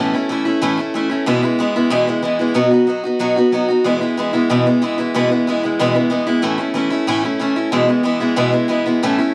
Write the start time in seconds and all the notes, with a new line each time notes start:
Already playing: A2 E3
0.00 A3 C#4 E4
0.14 A3 C#4 E4
0.29 E3 A3 C#4 E4
0.45 A3 C#4 E4
0.62 A2 E3 A3 C#4 E4
0.77 A3 C#4 E4
0.94 E3 A3 C#4 E4
1.10 A3 C#4 E4
1.26 E2 B2 E3 G#3 B3 E4
1.42 E3 G#3 B3 E4
1.59 E3 G#3 B3 E4
1.76 E3 G#3 B3 E4
1.90 E2 B2 E3 G#3 B3 E4
2.07 E3 G#3 B3 E4
2.22 E3 G#3 B3 E4
2.39 E3 G#3 B3 E4
2.54 B2 F#3 B3 D#4 F#4
2.71 B3 D#4 F#4
2.87 F#3 B3 D#4 F#4
3.04 B3 D#4 F#4
3.19 B2 F#3 B3 D#4 F#4
3.36 B3 D#4 F#4
3.52 F#3 B3 D#4 F#4
3.68 B3 D#4 F#4
3.84 E2 B2 E3 G#3 B3 E4
4.01 E3 G#3 B3 E4
4.17 E3 G#3 B3 E4
4.33 E3 G#3 B3 E4
4.50 E2 B2 E3 G#3 B3 E4
4.66 E3 G#3 B3 E4
4.82 E3 G#3 B3 E4
4.98 E3 G#3 B3 E4
5.14 E2 B2 E3 G#3 B3 E4
5.30 E3 G#3 B3 E4
5.47 E3 G#3 B3 E4
5.63 E3 G#3 B3 E4
5.79 E2 B2 E3 G#3 B3 E4
5.94 E3 G#3 B3 E4
6.10 E3 G#3 B3 E4
6.27 E3 G#3 B3 E4
6.42 A2 E3 A3 C#4 E4
6.58 A3 C#4 E4
6.74 E3 A3 C#4 E4
6.90 A3 C#4 E4
7.07 A2 E3 A3 C#4 E4
7.24 A3 C#4 E4
7.40 E3 A3 C#4 E4
7.56 A3 C#4 E4
7.72 E2 B2 E3 G#3 B3 E4
7.88 E3 G#3 B3 E4
8.03 E3 G#3 B3 E4
8.20 E3 G#3 B3 E4
8.36 E2 B2 E3 G#3 B3 E4
8.52 E3 G#3 B3 E4
8.68 E3 G#3 B3 E4
8.86 E3 G#3 B3 E4
9.03 A2 E3 A3 C#4 E4
9.18 A3 C#4 E4